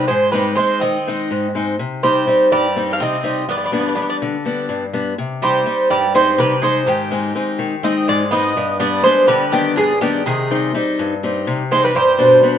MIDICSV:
0, 0, Header, 1, 4, 480
1, 0, Start_track
1, 0, Tempo, 483871
1, 96, Time_signature, 7, 3, 24, 8
1, 12479, End_track
2, 0, Start_track
2, 0, Title_t, "Bouzouki"
2, 0, Program_c, 0, 25
2, 77, Note_on_c, 0, 72, 89
2, 313, Note_off_c, 0, 72, 0
2, 317, Note_on_c, 0, 71, 76
2, 549, Note_off_c, 0, 71, 0
2, 560, Note_on_c, 0, 72, 83
2, 791, Note_off_c, 0, 72, 0
2, 805, Note_on_c, 0, 75, 85
2, 1491, Note_off_c, 0, 75, 0
2, 2016, Note_on_c, 0, 72, 84
2, 2463, Note_off_c, 0, 72, 0
2, 2501, Note_on_c, 0, 74, 92
2, 2900, Note_off_c, 0, 74, 0
2, 2904, Note_on_c, 0, 77, 73
2, 2975, Note_off_c, 0, 77, 0
2, 3000, Note_on_c, 0, 75, 96
2, 3436, Note_off_c, 0, 75, 0
2, 3479, Note_on_c, 0, 74, 86
2, 3538, Note_off_c, 0, 74, 0
2, 3549, Note_on_c, 0, 74, 59
2, 3609, Note_off_c, 0, 74, 0
2, 3625, Note_on_c, 0, 74, 58
2, 3684, Note_off_c, 0, 74, 0
2, 3704, Note_on_c, 0, 74, 49
2, 3761, Note_off_c, 0, 74, 0
2, 3781, Note_on_c, 0, 74, 53
2, 3836, Note_off_c, 0, 74, 0
2, 3855, Note_on_c, 0, 74, 54
2, 3910, Note_off_c, 0, 74, 0
2, 3921, Note_on_c, 0, 74, 58
2, 3975, Note_off_c, 0, 74, 0
2, 3987, Note_on_c, 0, 74, 58
2, 4049, Note_off_c, 0, 74, 0
2, 4063, Note_on_c, 0, 74, 72
2, 4124, Note_off_c, 0, 74, 0
2, 5392, Note_on_c, 0, 72, 87
2, 5831, Note_off_c, 0, 72, 0
2, 5859, Note_on_c, 0, 74, 93
2, 6100, Note_off_c, 0, 74, 0
2, 6104, Note_on_c, 0, 72, 88
2, 6342, Note_off_c, 0, 72, 0
2, 6346, Note_on_c, 0, 71, 89
2, 6565, Note_off_c, 0, 71, 0
2, 6586, Note_on_c, 0, 72, 92
2, 6805, Note_off_c, 0, 72, 0
2, 6825, Note_on_c, 0, 67, 85
2, 7781, Note_on_c, 0, 75, 91
2, 8002, Note_off_c, 0, 75, 0
2, 8024, Note_on_c, 0, 74, 96
2, 8221, Note_off_c, 0, 67, 0
2, 8252, Note_off_c, 0, 74, 0
2, 8256, Note_on_c, 0, 75, 93
2, 8702, Note_off_c, 0, 75, 0
2, 8731, Note_on_c, 0, 74, 87
2, 8958, Note_off_c, 0, 74, 0
2, 8962, Note_on_c, 0, 72, 95
2, 9192, Note_off_c, 0, 72, 0
2, 9203, Note_on_c, 0, 71, 98
2, 9446, Note_on_c, 0, 67, 80
2, 9457, Note_off_c, 0, 71, 0
2, 9690, Note_off_c, 0, 67, 0
2, 9694, Note_on_c, 0, 68, 89
2, 9927, Note_off_c, 0, 68, 0
2, 9931, Note_on_c, 0, 67, 78
2, 10156, Note_off_c, 0, 67, 0
2, 10187, Note_on_c, 0, 68, 79
2, 10627, Note_off_c, 0, 68, 0
2, 11624, Note_on_c, 0, 72, 90
2, 11742, Note_off_c, 0, 72, 0
2, 11750, Note_on_c, 0, 71, 88
2, 11854, Note_off_c, 0, 71, 0
2, 11866, Note_on_c, 0, 72, 95
2, 12479, Note_off_c, 0, 72, 0
2, 12479, End_track
3, 0, Start_track
3, 0, Title_t, "Steel-string acoustic guitar"
3, 0, Program_c, 1, 25
3, 98, Note_on_c, 1, 44, 65
3, 327, Note_on_c, 1, 56, 49
3, 334, Note_on_c, 1, 60, 46
3, 337, Note_on_c, 1, 63, 57
3, 560, Note_off_c, 1, 56, 0
3, 563, Note_off_c, 1, 44, 0
3, 565, Note_off_c, 1, 60, 0
3, 566, Note_off_c, 1, 63, 0
3, 572, Note_on_c, 1, 56, 41
3, 576, Note_on_c, 1, 60, 39
3, 579, Note_on_c, 1, 63, 45
3, 817, Note_on_c, 1, 51, 68
3, 958, Note_off_c, 1, 56, 0
3, 960, Note_off_c, 1, 60, 0
3, 961, Note_off_c, 1, 63, 0
3, 1064, Note_on_c, 1, 56, 49
3, 1068, Note_on_c, 1, 60, 43
3, 1073, Note_on_c, 1, 63, 55
3, 1283, Note_off_c, 1, 51, 0
3, 1298, Note_on_c, 1, 44, 63
3, 1445, Note_off_c, 1, 56, 0
3, 1447, Note_off_c, 1, 60, 0
3, 1451, Note_off_c, 1, 63, 0
3, 1535, Note_on_c, 1, 56, 50
3, 1540, Note_on_c, 1, 60, 44
3, 1547, Note_on_c, 1, 63, 54
3, 1727, Note_off_c, 1, 56, 0
3, 1731, Note_off_c, 1, 60, 0
3, 1735, Note_off_c, 1, 63, 0
3, 1763, Note_off_c, 1, 44, 0
3, 1779, Note_on_c, 1, 48, 62
3, 2017, Note_on_c, 1, 55, 50
3, 2023, Note_on_c, 1, 60, 47
3, 2024, Note_on_c, 1, 63, 57
3, 2243, Note_off_c, 1, 55, 0
3, 2244, Note_off_c, 1, 48, 0
3, 2250, Note_off_c, 1, 60, 0
3, 2251, Note_off_c, 1, 63, 0
3, 2254, Note_on_c, 1, 55, 45
3, 2262, Note_on_c, 1, 60, 43
3, 2264, Note_on_c, 1, 63, 47
3, 2497, Note_on_c, 1, 43, 71
3, 2639, Note_off_c, 1, 55, 0
3, 2644, Note_off_c, 1, 60, 0
3, 2645, Note_off_c, 1, 63, 0
3, 2736, Note_on_c, 1, 55, 50
3, 2741, Note_on_c, 1, 60, 47
3, 2745, Note_on_c, 1, 63, 53
3, 2963, Note_off_c, 1, 43, 0
3, 2978, Note_on_c, 1, 48, 65
3, 3121, Note_off_c, 1, 55, 0
3, 3122, Note_off_c, 1, 60, 0
3, 3126, Note_off_c, 1, 63, 0
3, 3210, Note_on_c, 1, 55, 52
3, 3214, Note_on_c, 1, 60, 45
3, 3220, Note_on_c, 1, 63, 57
3, 3405, Note_off_c, 1, 55, 0
3, 3408, Note_off_c, 1, 60, 0
3, 3410, Note_off_c, 1, 63, 0
3, 3443, Note_off_c, 1, 48, 0
3, 3458, Note_on_c, 1, 43, 66
3, 3691, Note_on_c, 1, 55, 49
3, 3696, Note_on_c, 1, 59, 45
3, 3700, Note_on_c, 1, 62, 58
3, 3919, Note_off_c, 1, 55, 0
3, 3923, Note_off_c, 1, 43, 0
3, 3924, Note_off_c, 1, 59, 0
3, 3927, Note_off_c, 1, 62, 0
3, 3931, Note_on_c, 1, 55, 43
3, 3935, Note_on_c, 1, 59, 38
3, 3942, Note_on_c, 1, 62, 52
3, 4186, Note_on_c, 1, 50, 68
3, 4318, Note_off_c, 1, 55, 0
3, 4321, Note_off_c, 1, 59, 0
3, 4322, Note_off_c, 1, 62, 0
3, 4415, Note_on_c, 1, 55, 50
3, 4421, Note_on_c, 1, 59, 47
3, 4425, Note_on_c, 1, 62, 56
3, 4647, Note_off_c, 1, 50, 0
3, 4651, Note_on_c, 1, 43, 69
3, 4800, Note_off_c, 1, 55, 0
3, 4804, Note_off_c, 1, 59, 0
3, 4805, Note_off_c, 1, 62, 0
3, 4895, Note_on_c, 1, 55, 49
3, 4897, Note_on_c, 1, 59, 47
3, 4903, Note_on_c, 1, 62, 57
3, 5088, Note_off_c, 1, 55, 0
3, 5088, Note_off_c, 1, 59, 0
3, 5092, Note_off_c, 1, 62, 0
3, 5120, Note_off_c, 1, 43, 0
3, 5142, Note_on_c, 1, 48, 68
3, 5377, Note_on_c, 1, 55, 53
3, 5382, Note_on_c, 1, 60, 43
3, 5385, Note_on_c, 1, 63, 55
3, 5603, Note_off_c, 1, 55, 0
3, 5605, Note_off_c, 1, 48, 0
3, 5607, Note_off_c, 1, 60, 0
3, 5607, Note_off_c, 1, 63, 0
3, 5613, Note_on_c, 1, 55, 45
3, 5620, Note_on_c, 1, 60, 40
3, 5625, Note_on_c, 1, 63, 48
3, 5855, Note_on_c, 1, 43, 67
3, 6000, Note_off_c, 1, 55, 0
3, 6002, Note_off_c, 1, 60, 0
3, 6002, Note_off_c, 1, 63, 0
3, 6093, Note_on_c, 1, 55, 49
3, 6098, Note_on_c, 1, 60, 45
3, 6103, Note_on_c, 1, 63, 60
3, 6322, Note_off_c, 1, 43, 0
3, 6331, Note_on_c, 1, 48, 67
3, 6478, Note_off_c, 1, 55, 0
3, 6482, Note_off_c, 1, 60, 0
3, 6485, Note_off_c, 1, 63, 0
3, 6566, Note_on_c, 1, 55, 50
3, 6570, Note_on_c, 1, 60, 50
3, 6575, Note_on_c, 1, 63, 58
3, 6762, Note_off_c, 1, 55, 0
3, 6764, Note_off_c, 1, 60, 0
3, 6768, Note_off_c, 1, 63, 0
3, 6800, Note_off_c, 1, 48, 0
3, 6812, Note_on_c, 1, 44, 71
3, 7051, Note_on_c, 1, 56, 53
3, 7054, Note_on_c, 1, 60, 47
3, 7060, Note_on_c, 1, 63, 57
3, 7280, Note_off_c, 1, 44, 0
3, 7280, Note_off_c, 1, 56, 0
3, 7282, Note_off_c, 1, 60, 0
3, 7284, Note_off_c, 1, 63, 0
3, 7290, Note_on_c, 1, 56, 42
3, 7295, Note_on_c, 1, 60, 39
3, 7301, Note_on_c, 1, 63, 52
3, 7526, Note_on_c, 1, 51, 73
3, 7678, Note_off_c, 1, 56, 0
3, 7679, Note_off_c, 1, 60, 0
3, 7680, Note_off_c, 1, 63, 0
3, 7769, Note_on_c, 1, 56, 50
3, 7776, Note_on_c, 1, 60, 45
3, 7781, Note_on_c, 1, 63, 51
3, 7996, Note_off_c, 1, 51, 0
3, 8019, Note_on_c, 1, 44, 65
3, 8156, Note_off_c, 1, 56, 0
3, 8160, Note_off_c, 1, 60, 0
3, 8163, Note_off_c, 1, 63, 0
3, 8252, Note_on_c, 1, 56, 48
3, 8257, Note_on_c, 1, 60, 43
3, 8262, Note_on_c, 1, 63, 54
3, 8445, Note_off_c, 1, 56, 0
3, 8450, Note_off_c, 1, 60, 0
3, 8450, Note_off_c, 1, 63, 0
3, 8483, Note_off_c, 1, 44, 0
3, 8498, Note_on_c, 1, 43, 70
3, 8727, Note_on_c, 1, 55, 55
3, 8733, Note_on_c, 1, 59, 45
3, 8736, Note_on_c, 1, 62, 56
3, 8962, Note_off_c, 1, 43, 0
3, 8963, Note_off_c, 1, 55, 0
3, 8967, Note_off_c, 1, 59, 0
3, 8969, Note_off_c, 1, 62, 0
3, 8975, Note_on_c, 1, 55, 49
3, 8979, Note_on_c, 1, 59, 45
3, 8983, Note_on_c, 1, 62, 50
3, 9209, Note_on_c, 1, 50, 73
3, 9359, Note_off_c, 1, 55, 0
3, 9362, Note_off_c, 1, 59, 0
3, 9362, Note_off_c, 1, 62, 0
3, 9446, Note_on_c, 1, 55, 50
3, 9451, Note_on_c, 1, 59, 51
3, 9456, Note_on_c, 1, 62, 53
3, 9677, Note_off_c, 1, 50, 0
3, 9695, Note_on_c, 1, 43, 62
3, 9833, Note_off_c, 1, 55, 0
3, 9837, Note_off_c, 1, 59, 0
3, 9839, Note_off_c, 1, 62, 0
3, 9932, Note_on_c, 1, 55, 52
3, 9936, Note_on_c, 1, 59, 52
3, 9940, Note_on_c, 1, 62, 60
3, 10126, Note_off_c, 1, 55, 0
3, 10126, Note_off_c, 1, 59, 0
3, 10130, Note_off_c, 1, 62, 0
3, 10160, Note_off_c, 1, 43, 0
3, 10179, Note_on_c, 1, 48, 71
3, 10422, Note_on_c, 1, 55, 52
3, 10425, Note_on_c, 1, 60, 45
3, 10427, Note_on_c, 1, 63, 60
3, 10642, Note_off_c, 1, 48, 0
3, 10647, Note_off_c, 1, 55, 0
3, 10648, Note_off_c, 1, 60, 0
3, 10656, Note_off_c, 1, 63, 0
3, 10658, Note_on_c, 1, 55, 48
3, 10662, Note_on_c, 1, 60, 41
3, 10668, Note_on_c, 1, 63, 55
3, 10903, Note_on_c, 1, 43, 71
3, 11041, Note_off_c, 1, 55, 0
3, 11041, Note_off_c, 1, 60, 0
3, 11046, Note_off_c, 1, 63, 0
3, 11142, Note_on_c, 1, 55, 53
3, 11148, Note_on_c, 1, 60, 49
3, 11152, Note_on_c, 1, 63, 58
3, 11364, Note_off_c, 1, 43, 0
3, 11380, Note_on_c, 1, 48, 72
3, 11523, Note_off_c, 1, 55, 0
3, 11524, Note_off_c, 1, 60, 0
3, 11528, Note_off_c, 1, 63, 0
3, 11622, Note_on_c, 1, 55, 54
3, 11628, Note_on_c, 1, 60, 47
3, 11632, Note_on_c, 1, 63, 61
3, 11811, Note_off_c, 1, 55, 0
3, 11812, Note_off_c, 1, 60, 0
3, 11817, Note_off_c, 1, 63, 0
3, 11842, Note_off_c, 1, 48, 0
3, 11854, Note_on_c, 1, 43, 71
3, 12087, Note_on_c, 1, 55, 53
3, 12091, Note_on_c, 1, 47, 51
3, 12097, Note_on_c, 1, 62, 61
3, 12316, Note_off_c, 1, 55, 0
3, 12319, Note_off_c, 1, 43, 0
3, 12325, Note_off_c, 1, 62, 0
3, 12328, Note_on_c, 1, 55, 46
3, 12333, Note_on_c, 1, 59, 46
3, 12339, Note_on_c, 1, 62, 52
3, 12476, Note_off_c, 1, 47, 0
3, 12479, Note_off_c, 1, 55, 0
3, 12479, Note_off_c, 1, 59, 0
3, 12479, Note_off_c, 1, 62, 0
3, 12479, End_track
4, 0, Start_track
4, 0, Title_t, "Bouzouki"
4, 0, Program_c, 2, 25
4, 74, Note_on_c, 2, 56, 73
4, 306, Note_off_c, 2, 56, 0
4, 310, Note_on_c, 2, 55, 63
4, 543, Note_off_c, 2, 55, 0
4, 547, Note_on_c, 2, 56, 70
4, 784, Note_off_c, 2, 56, 0
4, 793, Note_on_c, 2, 60, 65
4, 1485, Note_off_c, 2, 60, 0
4, 2015, Note_on_c, 2, 55, 69
4, 2463, Note_off_c, 2, 55, 0
4, 2500, Note_on_c, 2, 55, 77
4, 2881, Note_off_c, 2, 55, 0
4, 2887, Note_on_c, 2, 62, 55
4, 2961, Note_off_c, 2, 62, 0
4, 2976, Note_on_c, 2, 60, 83
4, 3423, Note_off_c, 2, 60, 0
4, 3459, Note_on_c, 2, 59, 67
4, 3523, Note_off_c, 2, 59, 0
4, 3535, Note_on_c, 2, 59, 49
4, 3600, Note_off_c, 2, 59, 0
4, 3611, Note_on_c, 2, 59, 52
4, 3677, Note_off_c, 2, 59, 0
4, 3692, Note_on_c, 2, 59, 43
4, 3751, Note_off_c, 2, 59, 0
4, 3763, Note_on_c, 2, 59, 53
4, 3827, Note_off_c, 2, 59, 0
4, 3841, Note_on_c, 2, 59, 43
4, 3903, Note_off_c, 2, 59, 0
4, 3915, Note_on_c, 2, 59, 46
4, 3976, Note_off_c, 2, 59, 0
4, 3991, Note_on_c, 2, 59, 48
4, 4048, Note_off_c, 2, 59, 0
4, 4060, Note_on_c, 2, 59, 53
4, 4123, Note_off_c, 2, 59, 0
4, 5381, Note_on_c, 2, 55, 76
4, 5825, Note_off_c, 2, 55, 0
4, 5854, Note_on_c, 2, 55, 80
4, 6078, Note_off_c, 2, 55, 0
4, 6097, Note_on_c, 2, 56, 75
4, 6320, Note_off_c, 2, 56, 0
4, 6332, Note_on_c, 2, 55, 75
4, 6558, Note_off_c, 2, 55, 0
4, 6564, Note_on_c, 2, 56, 74
4, 6793, Note_off_c, 2, 56, 0
4, 6807, Note_on_c, 2, 51, 67
4, 7770, Note_on_c, 2, 60, 77
4, 7996, Note_off_c, 2, 60, 0
4, 8012, Note_on_c, 2, 56, 76
4, 8212, Note_off_c, 2, 51, 0
4, 8237, Note_off_c, 2, 56, 0
4, 8242, Note_on_c, 2, 59, 81
4, 8695, Note_off_c, 2, 59, 0
4, 8725, Note_on_c, 2, 59, 82
4, 8953, Note_off_c, 2, 59, 0
4, 8962, Note_on_c, 2, 56, 76
4, 9191, Note_off_c, 2, 56, 0
4, 9197, Note_on_c, 2, 55, 72
4, 9429, Note_off_c, 2, 55, 0
4, 9442, Note_on_c, 2, 51, 62
4, 9671, Note_off_c, 2, 51, 0
4, 9680, Note_on_c, 2, 50, 73
4, 9910, Note_off_c, 2, 50, 0
4, 9930, Note_on_c, 2, 51, 64
4, 10155, Note_off_c, 2, 51, 0
4, 10176, Note_on_c, 2, 51, 65
4, 10622, Note_off_c, 2, 51, 0
4, 11620, Note_on_c, 2, 56, 70
4, 11728, Note_off_c, 2, 56, 0
4, 11735, Note_on_c, 2, 55, 72
4, 11845, Note_off_c, 2, 55, 0
4, 11861, Note_on_c, 2, 55, 79
4, 12479, Note_off_c, 2, 55, 0
4, 12479, End_track
0, 0, End_of_file